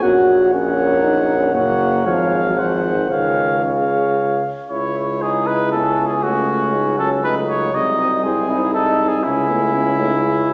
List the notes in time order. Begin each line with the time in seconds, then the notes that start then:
0.03 A#1 F#4 A#4 C#5 F#5
0.52 C#4 A#4 C#5 F#5
1.03 D#4
1.38 C#4
1.54 F#1 A#3 A#4 C#5 F#5
2.06 G#1 F3 G#4 C#5 F5
2.45 F#3
2.58 F3 G#4 C5 F#5
2.94 D#3
3.10 C#2 D#3 G#4 C#5 F5
3.64 C#3 G#4 C#5 F5
4.70 C#2 G#3 E4 C#5
5.21 D#4 E4 G#4
5.46 B4
5.72 B3 C#4 A4
6.06 G#4
6.23 A3 C#4 F#4
6.73 G#3 D#4
6.98 F#3 C#4 A4
7.24 A3 D#4 B4
7.49 C#5
7.73 C2 G#3 D#4 D#5
7.99 C4
8.23 G#3 C4 E4 G#4
8.49 D#4 E4
8.74 D#4 A4
9.08 G#4
9.23 C#2 G#3 C#4 E4
9.49 A3 B3
9.74 B3 C#4
9.98 A3 D#4
10.23 G#3 C#4 E4
10.49 F#4